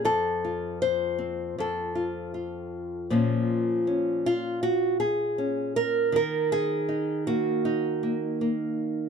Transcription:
0.05 F2 A4
0.44 F4
0.82 C5
1.19 C4
1.58 F2 A4
1.95 F4
2.34 F4
3.10 A#2 F3 A#3 C#4
3.87 C#4
4.26 F4
4.63 F#4
5.00 G#4
5.38 C#4
5.76 A#4
6.12 D#3 A#4
6.52 G#4
6.89 D#4
7.27 A#3 F#4
7.65 D#4
8.03 A#3
8.41 A#3

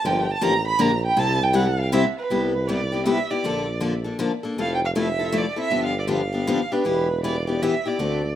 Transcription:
0.04 G1 D3 F3 A#3 D4 G4 G5
0.31 A5
0.41 A1 D3 F3 A#3 D4 G4 A#5
0.67 B5
0.79 A#1 D3 F3 A#3 D4 G4 A#5
1.06 G5
1.16 C2 C3 G3 C4 E4 G4 A5
1.43 G5
1.53 C3 G3 C4 E4 G4 F#5
1.79 F5
1.92 C3 G3 C4 E4 G4 E5
2.18 B4
2.30 C2 C3 G3 B3 E4 G4
2.68 C3 G3 B3 E4 G4 D5
2.92 B3 E4 G4
3.06 C3 G3 B3 E4 G4 E5
3.30 B3 E4 G4 D5
3.44 A#1 D3 F3 A#3 D4 A4
3.80 D3 F3 A#3 D4 A4
4.04 A#3 D4 A4
4.19 D3 F3 A#3 D4 A4
4.43 A#3 D4 A4
4.57 F1 F3 A3 C4 E4 A4 F5
4.75 G5
4.85 F5
4.95 F3 A3 C4 E4 A4 E5
5.19 C4 E4 A4
5.32 F3 A3 C4 E4 A4
5.38 D5
5.56 C4 E4 A4
5.61 E5
5.70 G1 D3 F3 B3 D4 G4
5.85 F5
5.99 D5
6.07 D3 F3 B3 D4 G4 F5
6.33 B3 D4 G4
6.47 D3 F3 B3 D4 G4
6.72 B3 D4 G4 B4
6.85 E1 E3 B3 E4 G4
7.24 E3 B3 E4 G4 D5
7.47 B3 E4 G4 D5
7.62 E3 B3 E4 G4 E5
7.86 B3 E4 G4 D5
7.99 D2 D3 A3 C4 F#4 A4

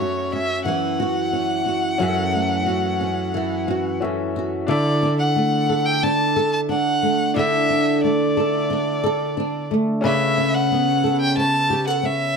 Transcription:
Already playing: F#2 F#3 A3 C#4 F#4 A4 C#5 E5
0.00 F#4
0.32 C#4 E5
0.65 E3 F#5
1.00 F#4
1.33 C#4
1.66 F#4
1.98 F#2 C#4 F#4 G#4
2.03 E5
2.08 A4
2.34 A3
2.66 F#4
3.01 C#4
3.34 E3
3.68 F#4
4.00 C#4 F#4 A4 E5
4.36 F#4
4.67 D3 D4 E4 A4 D5
4.71 E5
5.02 D4
5.19 F#5
5.36 A3
5.69 A4
5.85 G5
6.03 D4 A5
6.36 A4
6.53 A5
6.69 D4 F#5
7.02 A3
7.34 D3 D4 E4 A4 E5
7.38 E5
7.70 D4
8.04 A3 D5
8.37 A4
8.70 D4
9.04 A4
9.37 D4
9.71 A3
10.01 C#3 C#4 A4 B4 E5
10.05 D5
10.12 E5
10.37 C#4
10.54 F#5
10.72 B3
11.04 A4
11.21 G5
11.37 C#4 A5
11.70 G4
11.87 A4 F#5
12.03 C#4 E5

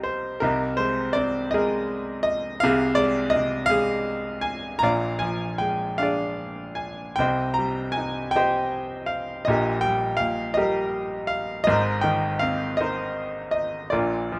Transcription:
Already playing: C2 C3 G3 D#4 G4 A#4 D#5 F5 G5
0.03 C5
0.40 C2 C3 D#4 A#4
0.77 G#3 C5
1.13 C4 D5
1.51 G#3 G#4 A#4 D#5
2.23 D#5
2.60 C2 C3 F5
2.64 G#4
2.95 G#3 D5
3.30 D#5
3.36 C3
3.66 F5
3.70 G#3 G#4
4.41 G#5
4.79 A#1 A#2 A#5
4.83 D5 F5
5.19 F3 G#5
5.58 G#3 G5
5.98 D4 F5
6.02 G#4 D5
6.75 G#5
7.16 C2 C3 G5
7.20 C5 D#5
7.54 A#5
7.59 G3
7.92 G#5
7.97 D#4
8.31 G5
8.36 G4 C5 D#5
9.06 F5
9.45 A#1 A#2 D#5
9.49 G4 A#4
9.81 G3 G5
10.17 A#2 F5
10.54 G3 G4 A#4 D#5
11.27 F5
11.64 G#2 A#4 C5 D#5
11.68 G#1
12.01 D#3 G5
12.39 C4 F5
12.77 D#4 A#4 C5 D#5
13.51 D#5
13.90 A#1 A#2 F4 A#4 D5
14.32 F3

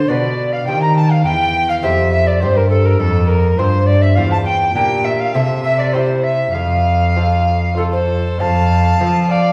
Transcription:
Already playing: C5
0.08 B2 D4 F4 B4 D5
0.53 F5
0.66 D#3 C4 G4 C5 G5
0.82 A#5
0.96 A5
1.11 F5
1.24 E2 G5
1.69 F5
1.83 F2 C4 G4 C5 E5
2.12 E5
2.27 D5
2.41 G2 C4 G4 C5
2.57 A#4
2.70 A4
2.85 A#4
2.99 F2 A4
3.28 A#4
3.58 G2 C4 F4 C5
3.87 D5
4.02 E5
4.15 E2 C4 F4 C5 F5
4.31 A5
4.45 G5
4.75 A#2 D4 G4 A#4 G5
5.05 E5
5.20 F5
5.34 C3 C4 F4 A4 E5
5.64 E5
5.79 D5
5.93 C4 E4 G4 C5
6.23 E5
6.53 F2 F5
7.16 C4 F4 A4
7.77 C4 F4 A4
7.93 A4 C5
8.40 F2 F5 A5
9.00 F3 C4 F4 A4
9.31 D5 F5

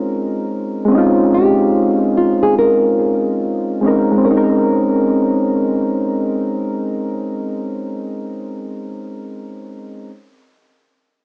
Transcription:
Already playing: G#3 C4 C#4 D#4 F4 A#4
0.85 G#3 C4
0.91 C#4 D#4
0.98 F4
1.34 G4
1.95 F4
2.17 F4
2.43 G#4
2.59 A#4
3.81 G#3 C4 C#4
3.86 D#4 A#4
4.12 G#3
4.18 C4
4.24 C#4 A#4
4.31 D#4
4.37 A#4

